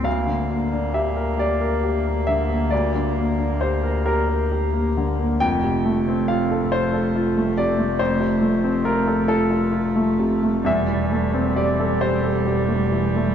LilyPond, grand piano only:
<<
  \new Staff \with { instrumentName = "Grand piano" } { \time 6/8 \key bes \lydian \tempo 4. = 45 f''4 e''8 d''4 e''8 | d''4 c''8 bes'4. | g''4 f''8 c''4 d''8 | c''4 bes'8 a'4. |
e''4 d''8 c''4. | }
  \new Staff \with { instrumentName = "Grand piano" } { \time 6/8 \key bes \lydian d,16 d16 bes16 d'16 g'16 bes'16 g'16 bes'16 g'16 bes16 d16 bes16 | d,16 d16 bes16 d'16 g'16 bes'16 g'8 g'16 bes16 d16 bes16 | f,16 c16 a16 c'16 f'16 a'16 f'16 a'16 f'16 a16 c16 a16 | f,16 c16 a16 c'16 f'16 a'16 f'16 a'16 f'16 a16 c16 a16 |
e,16 e16 a16 c'16 g'16 a'16 g'16 a'16 g'16 a16 e16 a16 | }
>>